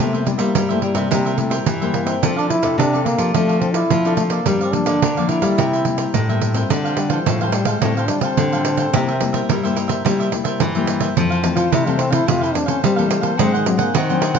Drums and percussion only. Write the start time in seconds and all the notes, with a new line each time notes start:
0.00 pandeiro
0.14 pandeiro
0.27 pandeiro
0.39 pandeiro
0.55 pandeiro
0.71 pandeiro
0.82 pandeiro
0.95 pandeiro
1.11 pandeiro
1.26 pandeiro
1.38 pandeiro
1.51 pandeiro
1.66 pandeiro
1.82 pandeiro
1.94 pandeiro
2.07 pandeiro
2.23 pandeiro
2.38 pandeiro
2.50 pandeiro
2.63 pandeiro
2.80 pandeiro
2.94 pandeiro
3.06 pandeiro
3.19 pandeiro
3.34 pandeiro
3.49 pandeiro
3.61 pandeiro
3.74 pandeiro
3.90 pandeiro
4.05 pandeiro
4.17 pandeiro
4.30 pandeiro
4.46 pandeiro
4.61 pandeiro
4.73 pandeiro
4.86 pandeiro
5.02 pandeiro
5.17 pandeiro
5.29 pandeiro
5.42 pandeiro
5.58 pandeiro
5.73 pandeiro
5.85 pandeiro
5.98 pandeiro
6.14 pandeiro
6.29 pandeiro
6.41 pandeiro
6.55 pandeiro
6.70 pandeiro
6.85 pandeiro
6.97 pandeiro
7.10 pandeiro
7.26 pandeiro
7.41 pandeiro
7.52 pandeiro
7.65 pandeiro
7.82 pandeiro
7.97 pandeiro
8.08 pandeiro
8.21 pandeiro
8.37 pandeiro
8.52 pandeiro
8.65 pandeiro
8.77 pandeiro
8.94 pandeiro
9.09 pandeiro
9.21 pandeiro
9.34 pandeiro
9.49 pandeiro
9.65 pandeiro
9.77 pandeiro
9.89 pandeiro
10.06 pandeiro
10.20 pandeiro
10.32 pandeiro
10.45 pandeiro
10.60 pandeiro
10.75 pandeiro
10.87 pandeiro
11.00 pandeiro
11.17 pandeiro
11.32 pandeiro
11.44 pandeiro
11.57 pandeiro
11.72 pandeiro
11.87 pandeiro
11.99 pandeiro
12.13 pandeiro
12.28 pandeiro
12.43 pandeiro
12.55 pandeiro
12.68 pandeiro
12.84 pandeiro
12.99 pandeiro
13.11 pandeiro
13.23 pandeiro
13.39 pandeiro
13.54 pandeiro
13.66 pandeiro
13.79 pandeiro
13.95 pandeiro
14.09 pandeiro
14.22 pandeiro
14.35 pandeiro